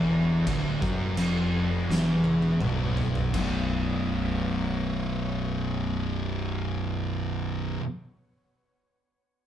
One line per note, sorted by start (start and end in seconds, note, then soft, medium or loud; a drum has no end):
0.00 0.43 E1 loud
0.00 0.47 E2 loud
0.00 3.31 B3 medium
0.00 3.30 D4 medium
0.00 3.30 F#4 medium
0.47 0.80 D1 loud
0.47 0.82 D2 loud
0.47 kick loud
0.47 crash medium
0.82 1.15 F#1 loud
0.82 1.17 F#2 loud
0.82 kick loud
1.16 1.84 F1 loud
1.16 1.88 F2 loud
1.16 crash medium
1.88 2.57 E1 loud
1.88 2.60 E2 loud
1.88 snare medium
2.24 high tom medium
2.42 high tom medium
2.60 3.30 B0 loud
2.60 3.32 B1 loud
2.60 mid tom loud
2.97 floor tom loud
3.15 floor tom loud
3.34 7.76 B0 loud
3.34 7.80 B1 loud
3.34 7.81 F#2 loud
3.34 7.82 B2 loud
3.34 7.06 B3 medium
3.34 7.06 F#4 medium
3.34 7.06 C#5 loud
3.34 kick loud
3.34 crash medium